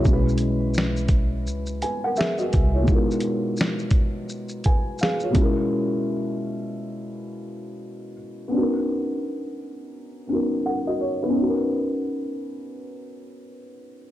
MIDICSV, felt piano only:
0, 0, Header, 1, 2, 480
1, 0, Start_track
1, 0, Key_signature, 5, "major"
1, 0, Tempo, 705882
1, 39, Time_signature, 4, 2, 24, 8
1, 9595, End_track
2, 0, Start_track
2, 0, Title_t, "Felt piano"
2, 0, Program_c, 0, 0
2, 0, Control_c, 0, 64, 127
2, 0, Note_on_c, 0, 73, 69
2, 7, Note_on_c, 0, 54, 56
2, 28, Note_on_c, 0, 61, 64
2, 48, Note_on_c, 0, 64, 65
2, 49, Control_c, 0, 64, 0
2, 50, Note_on_c, 0, 56, 70
2, 67, Note_on_c, 0, 66, 59
2, 77, Note_off_c, 0, 54, 0
2, 88, Note_on_c, 0, 71, 79
2, 156, Control_c, 0, 64, 127
2, 178, Note_off_c, 0, 73, 0
2, 1210, Note_off_c, 0, 61, 0
2, 1220, Note_off_c, 0, 64, 0
2, 1221, Note_off_c, 0, 56, 0
2, 1229, Note_off_c, 0, 66, 0
2, 1235, Note_off_c, 0, 71, 0
2, 1240, Note_on_c, 0, 80, 61
2, 1246, Note_on_c, 0, 71, 46
2, 1379, Note_off_c, 0, 80, 0
2, 1381, Note_off_c, 0, 71, 0
2, 1388, Note_on_c, 0, 78, 71
2, 1393, Note_on_c, 0, 70, 56
2, 1476, Note_off_c, 0, 78, 0
2, 1478, Note_off_c, 0, 70, 0
2, 1479, Note_on_c, 0, 76, 78
2, 1482, Note_on_c, 0, 68, 57
2, 1618, Note_off_c, 0, 76, 0
2, 1619, Note_off_c, 0, 68, 0
2, 1624, Note_on_c, 0, 75, 54
2, 1628, Note_on_c, 0, 66, 55
2, 1853, Note_off_c, 0, 75, 0
2, 1855, Note_off_c, 0, 66, 0
2, 1866, Note_on_c, 0, 73, 60
2, 1870, Note_on_c, 0, 64, 51
2, 1916, Note_on_c, 0, 47, 70
2, 1931, Note_on_c, 0, 56, 66
2, 1949, Note_on_c, 0, 59, 66
2, 1965, Note_on_c, 0, 63, 57
2, 1968, Control_c, 0, 64, 0
2, 1981, Note_on_c, 0, 65, 61
2, 1997, Note_on_c, 0, 70, 75
2, 2094, Note_off_c, 0, 73, 0
2, 2096, Note_off_c, 0, 64, 0
2, 2101, Control_c, 0, 64, 127
2, 3146, Note_off_c, 0, 65, 0
2, 3154, Note_off_c, 0, 70, 0
2, 3167, Note_on_c, 0, 80, 62
2, 3171, Note_on_c, 0, 71, 49
2, 3391, Note_off_c, 0, 80, 0
2, 3393, Note_off_c, 0, 71, 0
2, 3408, Note_on_c, 0, 77, 69
2, 3413, Note_on_c, 0, 68, 57
2, 3543, Note_off_c, 0, 77, 0
2, 3546, Note_off_c, 0, 68, 0
2, 3558, Note_on_c, 0, 73, 55
2, 3559, Note_on_c, 0, 65, 45
2, 3590, Note_off_c, 0, 47, 0
2, 3598, Note_off_c, 0, 56, 0
2, 3605, Note_on_c, 0, 47, 72
2, 3607, Note_off_c, 0, 59, 0
2, 3615, Note_off_c, 0, 63, 0
2, 3623, Note_on_c, 0, 56, 71
2, 3639, Note_on_c, 0, 61, 66
2, 3647, Control_c, 0, 64, 0
2, 3655, Note_on_c, 0, 64, 67
2, 3671, Note_on_c, 0, 66, 64
2, 3686, Note_on_c, 0, 70, 82
2, 3752, Control_c, 0, 64, 127
2, 3780, Note_off_c, 0, 73, 0
2, 3781, Note_off_c, 0, 65, 0
2, 5515, Note_off_c, 0, 47, 0
2, 5524, Note_off_c, 0, 56, 0
2, 5532, Note_off_c, 0, 61, 0
2, 5540, Note_off_c, 0, 64, 0
2, 5548, Note_off_c, 0, 66, 0
2, 5556, Note_off_c, 0, 70, 0
2, 5766, Note_on_c, 0, 59, 64
2, 5787, Note_on_c, 0, 61, 58
2, 5806, Control_c, 0, 64, 0
2, 5808, Note_on_c, 0, 62, 49
2, 5828, Note_on_c, 0, 66, 57
2, 5850, Note_on_c, 0, 70, 68
2, 5852, Note_on_c, 0, 63, 56
2, 5857, Note_off_c, 0, 62, 0
2, 5919, Control_c, 0, 64, 127
2, 6958, Note_off_c, 0, 59, 0
2, 6969, Note_off_c, 0, 61, 0
2, 6987, Note_on_c, 0, 59, 44
2, 6990, Note_off_c, 0, 66, 0
2, 6994, Note_off_c, 0, 63, 0
2, 6996, Note_on_c, 0, 61, 42
2, 7001, Note_off_c, 0, 70, 0
2, 7004, Note_on_c, 0, 63, 48
2, 7018, Note_on_c, 0, 66, 44
2, 7028, Note_on_c, 0, 70, 51
2, 7242, Note_off_c, 0, 63, 0
2, 7243, Note_off_c, 0, 70, 0
2, 7248, Note_on_c, 0, 78, 61
2, 7249, Note_off_c, 0, 66, 0
2, 7253, Note_on_c, 0, 70, 47
2, 7382, Note_off_c, 0, 78, 0
2, 7386, Note_off_c, 0, 70, 0
2, 7394, Note_on_c, 0, 75, 59
2, 7397, Note_on_c, 0, 66, 47
2, 7479, Note_off_c, 0, 75, 0
2, 7481, Note_off_c, 0, 66, 0
2, 7486, Note_on_c, 0, 73, 68
2, 7621, Note_off_c, 0, 73, 0
2, 7635, Note_off_c, 0, 59, 0
2, 7635, Note_on_c, 0, 71, 57
2, 7638, Note_on_c, 0, 63, 48
2, 7645, Note_on_c, 0, 59, 71
2, 7674, Note_off_c, 0, 61, 0
2, 7684, Note_on_c, 0, 61, 71
2, 7715, Note_off_c, 0, 63, 0
2, 7725, Note_on_c, 0, 63, 61
2, 7727, Control_c, 0, 64, 0
2, 7767, Note_on_c, 0, 66, 68
2, 7807, Note_on_c, 0, 70, 80
2, 7829, Control_c, 0, 64, 127
2, 7858, Note_off_c, 0, 71, 0
2, 9595, Note_off_c, 0, 59, 0
2, 9595, Note_off_c, 0, 61, 0
2, 9595, Note_off_c, 0, 63, 0
2, 9595, Note_off_c, 0, 66, 0
2, 9595, Note_off_c, 0, 70, 0
2, 9595, End_track
0, 0, End_of_file